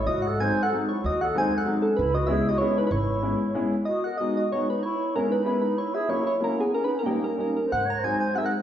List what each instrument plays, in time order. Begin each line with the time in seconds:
Already playing: clarinet E4
0.06 upright bass G#2, clarinet F#4, soft synth lead D#5
0.22 soft synth lead F#5
0.27 clarinet A4
0.39 upright piano F#3 G#3 C4 D#4, clarinet C5, soft synth lead G#5
0.63 clarinet A4, soft synth lead F#5
0.72 upright piano F#3 G#3 C4 D#4
0.89 clarinet E4, soft synth lead C#5
1.04 upright bass D#2, clarinet F#4, soft synth lead D#5
1.21 clarinet A4, soft synth lead F#5
1.35 upright piano F#3 G#3 C4 D#4, clarinet C5, soft synth lead G#5
1.55 clarinet A4, soft synth lead F#5
1.65 upright piano F#3 G#3 C4 D#4
1.82 clarinet C#4, soft synth lead A4
1.97 upright bass C#2, clarinet E4, soft synth lead B4
2.15 clarinet F#4, soft synth lead D#5
2.27 upright piano G#3 B3 C#4 E4, soft synth lead E5
2.31 clarinet G#4
2.49 clarinet F#4, soft synth lead D#5
2.58 upright piano G#3 B3 C#4 E4, clarinet E4, soft synth lead C#5
2.78 clarinet D#4, soft synth lead B4
2.83 clarinet C#4 D#4
2.87 soft synth lead B4
2.91 upright bass G#1, clarinet E4, soft synth lead C#5
3.22 upright piano G#3 B3 C#4 E4
3.54 upright piano G#3 B3 C#4 E4
3.85 clarinet F#4, soft synth lead D#5
4.04 clarinet A#4, soft synth lead F#5
4.18 upright piano G#3 B3 D#4 F#4, clarinet F#4, soft synth lead D#5
4.37 clarinet F#4, soft synth lead D#5
4.52 upright piano G#3 B3 D#4 F#4, clarinet F#4, soft synth lead C#5
4.69 clarinet D#4, soft synth lead B4
4.83 clarinet E4, soft synth lead C#5
5.15 upright piano G#3 B3 C#4 E4, clarinet C#4, soft synth lead A#4
5.30 clarinet D#4, soft synth lead B4
5.45 upright piano G#3 B3 C#4 E4, clarinet E4, soft synth lead B4
5.62 clarinet D#4, soft synth lead B4
5.77 clarinet E4, soft synth lead C#5
5.95 clarinet G#4, soft synth lead E5
6.08 upright piano F#3 A#3 C#4 E4, clarinet E4, soft synth lead C#5
6.26 clarinet E4, soft synth lead C#5
6.40 upright piano F#3 A#3 C#4 E4, clarinet C#4, soft synth lead A#4
6.58 clarinet B3, soft synth lead G#4
6.73 clarinet C#4, soft synth lead A#4
6.84 clarinet D#4, soft synth lead B4
6.95 clarinet C#4, soft synth lead A#4
7.03 upright piano G3 A#3 C#4 D#4, clarinet A#3, soft synth lead G4
7.20 clarinet C#4, soft synth lead A#4
7.36 upright piano G3 A#3 C#4 D#4, clarinet C#4, soft synth lead A#4
7.52 clarinet C#4
7.57 soft synth lead A#4
7.67 clarinet C5
7.72 upright bass G#1, soft synth lead F#5
7.86 clarinet C#5
7.90 soft synth lead A#5
8.00 upright piano F#3 G#3 C4, clarinet C5
8.04 upright piano D#4, soft synth lead G#5
8.19 clarinet C5, soft synth lead G#5
8.34 upright piano F#3 G#3 C4 D#4, clarinet C5, soft synth lead F#5
8.38 clarinet G#4, soft synth lead E5
8.42 clarinet A#4, soft synth lead F#5